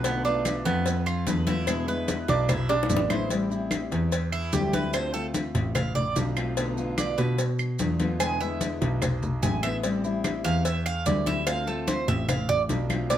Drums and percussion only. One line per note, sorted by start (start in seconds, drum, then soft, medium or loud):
0.04 cowbell loud
0.04 high conga soft
0.04 maracas medium
0.25 high conga soft
0.25 maracas soft
0.45 cowbell medium
0.45 high conga medium
0.45 claves medium
0.45 maracas medium
0.66 cowbell medium
0.66 high conga soft
0.66 maracas soft
0.86 cowbell loud
0.86 high conga soft
0.86 maracas medium
1.07 high conga soft
1.07 claves medium
1.07 maracas soft
1.27 cowbell medium
1.27 high conga medium
1.27 maracas medium
1.47 cowbell medium
1.47 high conga medium
1.47 maracas soft
1.67 cowbell loud
1.67 high conga soft
1.67 claves medium
1.67 maracas medium
1.88 high conga soft
1.88 maracas soft
2.08 cowbell medium
2.08 high conga loud
2.08 maracas medium
2.28 cowbell medium
2.28 maracas soft
2.49 cowbell loud
2.49 high conga soft
2.49 low conga medium
2.49 claves medium
2.49 maracas medium
2.69 high bongo loud
2.69 high conga soft
2.69 maracas soft
2.83 low bongo medium
2.90 cowbell medium
2.90 high conga medium
2.90 maracas medium
2.97 low bongo loud
3.10 cowbell medium
3.10 low bongo medium
3.10 high conga medium
3.10 claves medium
3.10 maracas soft
3.30 cowbell loud
3.30 high conga soft
3.30 maracas medium
3.51 high conga soft
3.51 maracas soft
3.71 cowbell medium
3.71 high conga medium
3.71 claves medium
3.71 maracas medium
3.91 cowbell medium
3.91 high conga soft
3.91 maracas soft
4.12 cowbell loud
4.12 high conga soft
4.12 maracas medium
4.32 high conga soft
4.32 claves medium
4.32 maracas soft
4.53 cowbell medium
4.53 high conga medium
4.53 maracas medium
4.73 cowbell medium
4.73 high conga medium
4.73 maracas soft
4.93 cowbell loud
4.93 high conga soft
4.93 claves medium
4.93 maracas medium
5.14 high conga soft
5.14 maracas soft
5.34 cowbell medium
5.34 high conga medium
5.34 maracas medium
5.55 cowbell medium
5.55 maracas soft
5.75 cowbell loud
5.75 high conga soft
5.75 low conga medium
5.75 claves medium
5.75 maracas medium
5.96 high conga soft
5.96 low conga medium
5.96 maracas soft
6.16 cowbell medium
6.16 high conga medium
6.16 maracas medium
6.36 cowbell medium
6.36 claves medium
6.36 maracas soft
6.57 cowbell loud
6.57 high conga soft
6.57 maracas medium
6.78 high conga soft
6.78 maracas soft
6.98 cowbell medium
6.98 high conga medium
6.98 claves medium
6.98 maracas medium
7.18 cowbell medium
7.18 high conga soft
7.18 maracas soft
7.38 cowbell loud
7.38 high conga soft
7.38 maracas medium
7.59 high conga soft
7.59 claves medium
7.59 maracas soft
7.79 cowbell medium
7.79 high conga medium
7.79 maracas medium
7.99 cowbell medium
7.99 high conga medium
7.99 maracas soft
8.20 cowbell loud
8.20 high conga soft
8.20 claves medium
8.20 maracas medium
8.41 high conga soft
8.41 maracas soft
8.61 cowbell medium
8.61 high conga medium
8.61 maracas medium
8.82 cowbell medium
8.82 maracas soft
9.02 cowbell loud
9.02 high conga soft
9.02 low conga medium
9.02 claves medium
9.02 maracas medium
9.23 high conga soft
9.23 low conga medium
9.23 maracas soft
9.43 cowbell medium
9.43 high conga medium
9.43 maracas medium
9.63 cowbell medium
9.63 claves medium
9.63 maracas soft
9.83 cowbell loud
9.83 high conga soft
9.83 maracas medium
10.04 high conga soft
10.04 maracas soft
10.24 cowbell medium
10.24 high conga medium
10.24 claves medium
10.24 maracas medium
10.45 cowbell medium
10.45 high conga soft
10.45 maracas soft
10.65 cowbell medium
10.65 high conga soft
10.65 maracas medium
10.86 high conga soft
10.86 claves medium
10.86 maracas soft
11.06 cowbell medium
11.06 high conga medium
11.06 maracas medium
11.26 cowbell medium
11.26 high conga medium
11.26 maracas soft
11.47 cowbell loud
11.47 high conga soft
11.47 claves medium
11.47 maracas medium
11.67 high conga soft
11.67 maracas soft
11.88 cowbell medium
11.88 high conga medium
11.88 maracas medium
12.08 cowbell medium
12.08 maracas soft
12.28 cowbell loud
12.28 high conga soft
12.28 low conga medium
12.28 claves medium
12.28 maracas medium
12.49 high conga soft
12.49 maracas soft
12.69 cowbell medium
12.69 high conga medium
12.69 maracas medium
12.90 cowbell medium
12.90 high conga medium
12.90 claves medium
12.90 maracas soft
13.10 cowbell loud
13.10 high conga soft
13.10 maracas medium